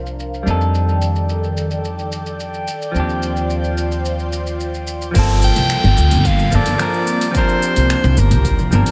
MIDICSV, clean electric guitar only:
0, 0, Header, 1, 2, 480
1, 0, Start_track
1, 0, Key_signature, -2, "minor"
1, 0, Tempo, 550459
1, 653, Time_signature, 4, 2, 24, 8
1, 7771, End_track
2, 0, Start_track
2, 0, Title_t, "Clean electric guitar"
2, 0, Program_c, 0, 27
2, 0, Note_on_c, 0, 53, 67
2, 0, Note_on_c, 0, 60, 61
2, 0, Note_on_c, 0, 62, 64
2, 0, Note_on_c, 0, 70, 79
2, 370, Note_off_c, 0, 53, 0
2, 375, Note_on_c, 0, 55, 66
2, 380, Note_off_c, 0, 60, 0
2, 388, Note_off_c, 0, 62, 0
2, 398, Note_on_c, 0, 62, 62
2, 402, Note_off_c, 0, 70, 0
2, 419, Note_on_c, 0, 63, 59
2, 440, Note_on_c, 0, 69, 77
2, 2525, Note_off_c, 0, 55, 0
2, 2537, Note_off_c, 0, 62, 0
2, 2543, Note_on_c, 0, 53, 73
2, 2547, Note_off_c, 0, 63, 0
2, 2558, Note_off_c, 0, 69, 0
2, 2565, Note_on_c, 0, 60, 64
2, 2590, Note_on_c, 0, 62, 63
2, 2612, Note_on_c, 0, 67, 80
2, 4447, Note_off_c, 0, 53, 0
2, 4458, Note_on_c, 0, 53, 91
2, 4460, Note_off_c, 0, 60, 0
2, 4473, Note_off_c, 0, 62, 0
2, 4479, Note_on_c, 0, 58, 88
2, 4484, Note_off_c, 0, 67, 0
2, 4498, Note_on_c, 0, 60, 89
2, 4523, Note_on_c, 0, 69, 106
2, 5647, Note_off_c, 0, 53, 0
2, 5657, Note_off_c, 0, 58, 0
2, 5667, Note_off_c, 0, 60, 0
2, 5676, Note_on_c, 0, 53, 81
2, 5679, Note_off_c, 0, 69, 0
2, 5689, Note_on_c, 0, 58, 75
2, 5701, Note_on_c, 0, 60, 72
2, 5711, Note_on_c, 0, 69, 91
2, 5896, Note_off_c, 0, 53, 0
2, 5902, Note_off_c, 0, 58, 0
2, 5909, Note_off_c, 0, 60, 0
2, 5913, Note_off_c, 0, 69, 0
2, 5913, Note_on_c, 0, 53, 88
2, 5920, Note_on_c, 0, 60, 82
2, 5934, Note_on_c, 0, 62, 80
2, 5945, Note_on_c, 0, 70, 100
2, 6365, Note_off_c, 0, 53, 0
2, 6376, Note_on_c, 0, 53, 102
2, 6378, Note_off_c, 0, 60, 0
2, 6385, Note_off_c, 0, 62, 0
2, 6391, Note_off_c, 0, 70, 0
2, 6393, Note_on_c, 0, 60, 90
2, 6416, Note_on_c, 0, 62, 90
2, 6438, Note_on_c, 0, 70, 113
2, 7566, Note_off_c, 0, 53, 0
2, 7574, Note_off_c, 0, 60, 0
2, 7586, Note_off_c, 0, 62, 0
2, 7594, Note_on_c, 0, 53, 85
2, 7597, Note_off_c, 0, 70, 0
2, 7608, Note_on_c, 0, 60, 79
2, 7619, Note_on_c, 0, 62, 73
2, 7631, Note_on_c, 0, 70, 91
2, 7771, Note_off_c, 0, 53, 0
2, 7771, Note_off_c, 0, 60, 0
2, 7771, Note_off_c, 0, 62, 0
2, 7771, Note_off_c, 0, 70, 0
2, 7771, End_track
0, 0, End_of_file